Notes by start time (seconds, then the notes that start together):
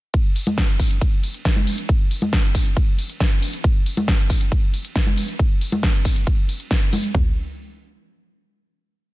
0.14 kick, closed hi-hat, ride
0.36 open hi-hat
0.47 closed hi-hat, high conga
0.58 kick, snare, closed hi-hat, ride
0.80 kick, open hi-hat
0.91 closed hi-hat
1.01 kick, closed hi-hat, ride
1.23 open hi-hat
1.34 closed hi-hat
1.45 kick, snare, closed hi-hat, ride
1.56 high conga
1.67 open hi-hat
1.78 closed hi-hat
1.89 kick, closed hi-hat, ride
2.11 open hi-hat
2.22 closed hi-hat, high conga
2.33 kick, snare, closed hi-hat, ride
2.55 kick, open hi-hat
2.66 closed hi-hat
2.77 kick, closed hi-hat, ride
2.99 open hi-hat
3.10 closed hi-hat
3.20 kick, snare, closed hi-hat, ride
3.42 open hi-hat
3.53 closed hi-hat
3.64 kick, closed hi-hat, ride
3.86 open hi-hat
3.97 closed hi-hat, high conga
4.08 kick, snare, closed hi-hat, ride
4.30 kick, open hi-hat
4.41 closed hi-hat
4.52 kick, closed hi-hat, ride
4.74 open hi-hat
4.85 closed hi-hat
4.96 kick, snare, closed hi-hat, ride
5.07 high conga
5.17 open hi-hat
5.28 closed hi-hat
5.39 kick, closed hi-hat, ride
5.61 open hi-hat
5.72 closed hi-hat, high conga
5.83 kick, snare, closed hi-hat, ride
6.05 kick, open hi-hat
6.16 closed hi-hat
6.27 kick, closed hi-hat, ride
6.49 open hi-hat
6.60 closed hi-hat
6.71 kick, snare, closed hi-hat, ride
6.93 open hi-hat, high conga
7.04 closed hi-hat
7.15 kick, floor tom